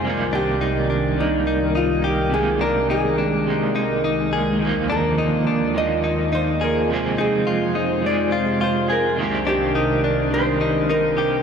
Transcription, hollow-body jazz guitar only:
X:1
M:4/4
L:1/8
Q:1/4=105
K:Cm
V:1 name="Hollow-body jazz guitar"
z G3 E2 F G | A B A4 z2 | z B3 e2 c B | z A3 d2 c B |
z G3 c2 B2 |]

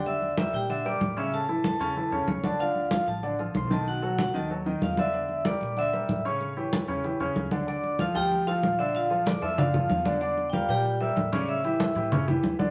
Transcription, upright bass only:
X:1
M:4/4
L:1/8
Q:1/4=189
K:Aphr
V:1 name="Upright bass" clef=bass
E,,3 B,,3 A,,2- | A,,3 E,,2 E,, D,,2- | D,,3 A,,,3 =B,,,2- | =B,,,3 ^D,,3 E,,2- |
E,,3 B,,3 A,,2- | A,,3 E,,2 E,, D,,2- | [K:Dm] D,,3 D,,3 B,,,2- | B,,,3 F,,2 F,, E,,2- |
E,,3 B,,3 A,,2- | A,,3 A,,3 D,,2 |]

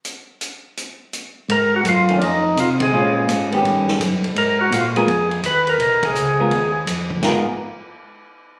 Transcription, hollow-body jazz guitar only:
X:1
M:4/4
L:1/8
Q:"Swing" 1/4=167
K:G#dor
V:1 name="Hollow-body jazz guitar"
z8 | z3 [D,=A,C] z4 | [G,CE]3 [D,B,C=G]3 z2 | z3 [G,B,EA] z4 |
z3 [G,B,EA] z4 | [G,B,EA] z6 z |]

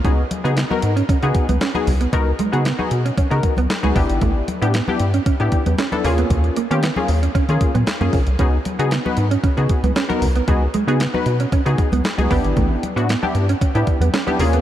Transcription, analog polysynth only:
X:1
M:4/4
L:1/16
Q:1/4=115
K:C#dor
V:1 name="Analog polysynth"
[B,DFG] z2 [B,DFG] z [B,DFA]2 z2 [B,DFG]2 z2 [B,DFG] z2 | [B,DFA] z2 [B,DFG] z [B,DFG]2 z2 [B,DFA]2 z2 [B,DFG] [B,=DE=G]2- | [B,=DE=G]2 z [B,DEG] z [B,DEG]2 z2 [B,DEG]2 z2 [B,DE=A] [^A,C^E^G]2- | [A,C^EG]2 z [A,CE=G] z [A,CE^G]2 z2 [A,CEG]2 z2 [A,CEG] z2 |
[B,DFG] z2 [B,DFG] z [B,DFB]2 z2 [B,DFG]2 z2 [B,DFA] z2 | [B,DFG] z2 [B,DFG] z [B,DFB]2 z2 [B,DFG]2 z2 [B,DFG] [B,=DE=G]2- | [B,=DE=G]2 z [B,DEF] z [B,DEG]2 z2 [B,DEG]2 z2 [B,DEG] [A,C^E^G]2 |]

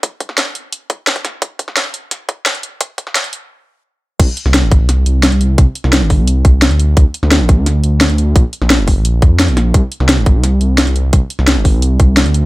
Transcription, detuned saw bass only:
X:1
M:4/4
L:1/16
Q:1/4=173
K:Dphr
V:1 name="Detuned saw bass" clef=bass
z16 | z16 | z16 | C,, z2 C,,2 G,,,2 C,,3 C,,3 C,,3 |
C,, z2 C,,2 G,,,2 C,,3 C,,3 D,,3 | D,, z2 D,,2 A,,,2 D,,3 D,,3 D,,3 | B,,, z2 B,,,2 F,,,2 B,,,3 F,,3 B,,,3 | C,, z2 C,,2 G,,,2 C,,3 C,,3 C,,3 |
C,, z2 C,,2 G,,,2 C,,3 C,,3 D,,3 |]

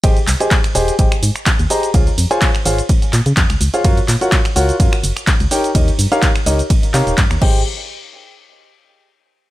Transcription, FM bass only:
X:1
M:4/4
L:1/16
Q:"Swing 16ths" 1/4=126
K:Ab
V:1 name="FM bass" clef=bass
A,,, z C,, z3 E,,, z A,,, z A,, z2 E,, z2 | D,, z F,, z3 A,,, z3 B,, D, F,, D,, D,, z | _G,, z B,, z3 D,, z G,, z _G,,, z2 D,, z2 | E,, z G,, z3 D,, z3 C, E,,, G,, E,, A,,,2 |
z16 |]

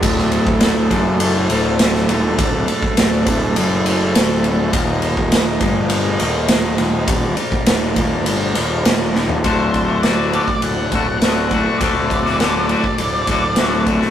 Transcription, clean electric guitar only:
X:1
M:4/4
L:1/16
Q:1/4=102
K:none
V:1 name="Clean electric guitar" clef=bass
D,,6 ^F,,4 D,,4 _E,,2 | D,,2 z2 D,,2 D,,2 ^F,,4 D,,4 | _E,,6 G,,4 E,,4 E,,2 | _E,,2 z2 E,,2 E,,2 G,,2 E,,2 E,,2 E,,2 |
[D,,A,,D,A,^F]3 [D,A,F] [D,,A,,D,A,F]2 [A,,D,A,F]3 z [A,,D,A,F]2 [D,,A,,D,A,F]2 [A,,D,A,F] [D,A,F] | [D,,A,,D,A,^F]3 [D,A,F] [D,,A,,D,A,F]2 [A,,D,A,F]3 z [A,,D,A,F]2 [D,,A,,D,A,F]2 [A,,D,A,F] [D,A,F] |]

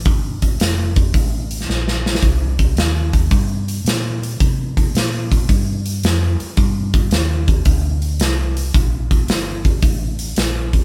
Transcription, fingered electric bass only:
X:1
M:4/4
L:1/8
Q:"Swing" 1/4=110
K:Gm
V:1 name="Fingered electric bass" clef=bass
G,,,2 F,,,2 A,,,2 B,,,2 | C,,2 E,,2 G,,2 B,,2 | C,2 B,,2 G,,2 F,, z | G,,2 E,,2 D,,2 C,,2 |
B,,,2 G,,,2 A,,,2 B,,,2 |]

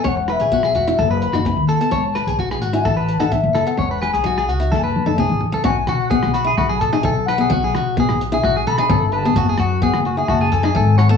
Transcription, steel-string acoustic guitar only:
X:1
M:4/4
L:1/16
Q:1/4=129
K:Bmix
V:1 name="Steel-string acoustic guitar"
C2 z2 B,2 z E2 z2 D C2 z B, | C2 z4 z E2 z2 D C2 z B, | C2 z2 F,2 z E2 z2 D C2 z B, | C2 z2 B,2 z E2 z2 D C2 z B, |
C2 z2 B,2 z E2 z2 D C2 z B, | C2 z2 B,2 z E2 z2 D C2 z B, |]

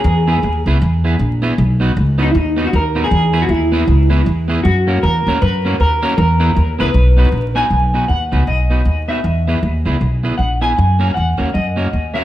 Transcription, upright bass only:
X:1
M:4/4
L:1/8
Q:"Swing" 1/4=156
K:B
V:1 name="Upright bass" clef=bass
E,,2 D,, C,, E,,2 A,,,2 | B,,,2 C,,2 D,,2 D,,2 | E,,2 D,,2 C,,2 E,,2 | F,,2 E,, D,, F,,2 D,,2 |
E,,2 D,, C,, B,,,2 A,,,2 | B,,,2 D,, C,, B,,,2 D,,2 | E,,2 D,, C,, B,,,2 A,,,2 | F,,2 E,, D,, F,,2 D,,2 |]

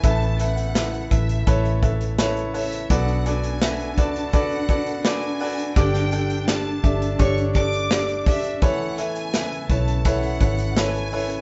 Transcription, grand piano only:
X:1
M:4/4
L:1/8
Q:1/4=84
K:A
V:1 name="Grand piano"
[EABe] [EABe] [EABe] [EABe] [EABc] [EABe] [EABc] [EABc] | [FABd] [FABd] [FABe] [FABd] [FABd] [FABd] [FABd] [FABd] | [D=GAd] [DGAd] [DGAd] [DGAe] [DGAc] [DGAd] [DGAd] [DGAd] | [EABc] [EABe] [EABe] [EABc] [EABc] [EABc] [EABc] [EABc] |]
V:2 name="Grand piano" clef=bass
[A,,E,]3 z4 z | [B,,F,]3 z4 z | [=G,,D,]3 z4 z | [A,,E,]3 z4 z |]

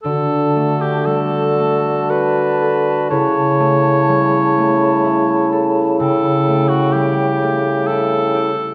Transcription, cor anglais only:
X:1
M:3/4
L:1/16
Q:1/4=63
K:D
V:1 name="Cor anglais"
A3 G A4 B4 | c8- c2 z2 | A3 F G4 A4 |]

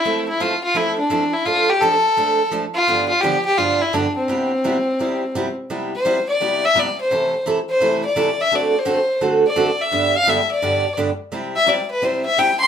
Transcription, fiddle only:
X:1
M:4/4
L:1/8
Q:"Swing" 1/4=170
K:C
V:1 name="Fiddle"
E E F F E D2 E | F G A4 z F- | F F G G F E D C- | C6- C z |
z c2 d2 e d c- | c2 z c2 d2 e | d c3 z d2 e- | e f e d3 z2 |
z e d B c e g c' |]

